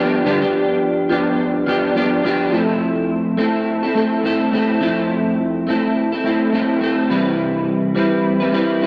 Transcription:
Already playing: F3 B3 D4
0.00 G4
0.25 G2 D3 F3 B3 D4 G4
0.42 F3 B3 D4 G4
1.09 F3 B3 D4 G4
1.66 F3 B3 D4 G4
1.95 F3 B3 D4 G4
2.24 F3 B3 D4 G4
2.52 F3 A3 C4 E4 A4
3.37 A3 C4 E4 A4
3.83 C4 E4 A4
3.95 A3 C4 E4 A4
4.23 A3 C4 E4 A4
4.52 A3 C4 E4 A4
4.81 F3 A3 C4 E4 A4
5.67 A3 C4 E4 A4
6.12 C4 E4 A4
6.24 A3 C4 E4 A4
6.53 A3 C4 E4 A4
6.81 A3 C4 E4 A4
7.09 C3 E3 G3 C4 E4 B4
7.95 G3 C4 E4 B4
8.40 G3 C4 E4 B4
8.51 G3 C4 E4 B4
8.81 G3 C4 E4 B4

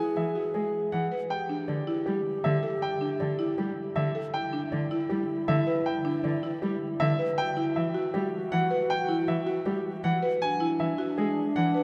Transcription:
Already playing: E4 G#4
0.16 E3 E5
0.36 F#4
0.54 G#3 G#4
0.92 E3 F#5
1.11 B4
1.30 G4 G5
1.49 D4
1.68 D3 D5
1.87 E4
2.06 G3 G4
2.44 D3 E5
2.63 A4
2.82 G5
3.01 D4
3.20 D3 D5
3.39 E4
3.58 G3 G4
3.96 D3 E5
4.15 A4
4.34 E4 G5
4.53 D4
4.72 D3 D5
4.91 E4
5.09 G3 G4
5.48 D3 E5
5.67 B4
5.86 G5
6.05 D4
6.24 D3 D5
6.43 E4
6.62 G3 G4
7.00 D3 E5
7.19 B4
7.38 F#4 G5
7.57 E4
7.76 E3 E5
7.94 F#4
8.14 G3 G4
8.52 E3 F#5
8.71 B4
8.90 G5
9.09 E4
9.28 E3 E5
9.47 F#4
9.66 G3 G4
10.04 E3 F#5
10.23 B4
10.41 D4 G#5
10.60 E4
10.80 E3 E5
10.98 F#4
11.18 G#3 G#4
11.56 E3 F#5
11.74 B4

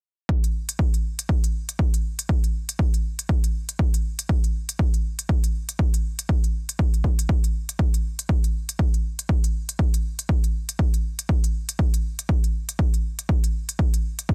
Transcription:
0.29 kick
0.44 closed hi-hat
0.69 closed hi-hat
0.79 kick
0.94 closed hi-hat
1.19 closed hi-hat
1.29 kick
1.44 closed hi-hat
1.69 closed hi-hat
1.79 kick
1.94 closed hi-hat
2.19 closed hi-hat
2.29 kick
2.44 closed hi-hat
2.69 closed hi-hat
2.79 kick
2.94 closed hi-hat
3.19 closed hi-hat
3.29 kick
3.44 closed hi-hat
3.69 closed hi-hat
3.79 kick
3.94 closed hi-hat
4.19 closed hi-hat
4.29 kick
4.44 closed hi-hat
4.69 closed hi-hat
4.79 kick
4.94 closed hi-hat
5.19 closed hi-hat
5.29 kick
5.44 closed hi-hat
5.69 closed hi-hat
5.79 kick
5.94 closed hi-hat
6.19 closed hi-hat
6.29 kick
6.44 closed hi-hat
6.69 closed hi-hat
6.79 kick
6.94 closed hi-hat
7.04 kick
7.19 closed hi-hat
7.29 kick
7.44 closed hi-hat
7.69 closed hi-hat
7.79 kick
7.94 closed hi-hat
8.19 closed hi-hat
8.29 kick
8.44 closed hi-hat
8.69 closed hi-hat
8.79 kick
8.94 closed hi-hat
9.19 closed hi-hat
9.29 kick
9.44 closed hi-hat
9.69 closed hi-hat
9.79 kick
9.94 closed hi-hat
10.19 closed hi-hat
10.29 kick
10.44 closed hi-hat
10.69 closed hi-hat
10.79 kick
10.94 closed hi-hat
11.19 closed hi-hat
11.29 kick
11.44 closed hi-hat
11.69 closed hi-hat
11.79 kick
11.94 closed hi-hat
12.19 closed hi-hat
12.29 kick
12.44 closed hi-hat
12.69 closed hi-hat
12.79 kick
12.94 closed hi-hat
13.19 closed hi-hat
13.29 kick
13.44 closed hi-hat
13.69 closed hi-hat
13.79 kick
13.94 closed hi-hat
14.19 closed hi-hat
14.29 kick

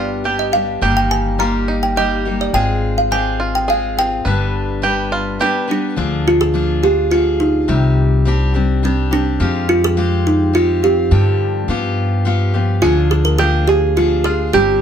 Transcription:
Already playing: G1 G3 B3 D4 F4 G4 D5
0.24 G3 B3 D4 G4
0.39 D#5
0.52 G3 B3 D4 G4 F5
0.81 G1 G2 D#3 G3 A#3 D#4 G4
0.97 G5
1.11 G#5
1.38 G3 A#3 D#4 F4 G4 A#5
1.68 D#4
1.83 G5
1.96 G3 A#3 D#4 G4 D#5
2.25 G3 A#3 D#4 G4
2.41 D5
2.53 G#1 G#3 C4 F4 G#4 G5
2.98 F5
3.11 G#3 C4 F4 G4 G#4 G#5
3.40 F4
3.55 G5
3.68 G#3 C4 F4 G#4 F5
3.97 C4 F4 G#4 G5
4.25 G1 G2 D3 G3 B3 D4 B4
4.82 G3 B3 D4 G4 B4
5.12 F4
5.39 G3 B3 D4 G4 B4
5.67 G3 B3 D4 B4
5.96 D2 D3 F3 D4 F4 G#4
6.28 F4
6.41 G#4
6.54 F3 D4 F4 G#4
6.83 D4 F4 G4 G#4
7.10 F3 D4 F4 G#4
7.40 D#4
7.68 C2 C3 D#3 G3 C4 G4
8.25 G3 C4 D4 G4
8.54 G3 C4 D4 G4
8.83 G3 C4 D4 G4
9.11 G3 C4 D4 G4
9.40 F2 F3 G#3 C4 F4 G4
9.69 F4
9.84 G#4
9.97 G#3 C4 F4 G4
10.27 D#4
10.53 G#3 C4 F4 G4
10.82 C4 F4 G4
11.11 G2 D3 F3 C4 D4 G4
11.68 G2 F3 B3 F4 G4
12.25 F3 B3 F4 G4
12.54 F3 B3 F4 G4
12.82 D2 D3 F3 D4 F4 G#4
13.11 G#4
13.25 A#4
13.39 F3 D4 F4 G4 G#4
13.68 G4 G#4
13.96 F3 D4 F4 G#4
14.24 D4 F4 G#4
14.53 G1 G2 D3 G3 C4 D4 G4

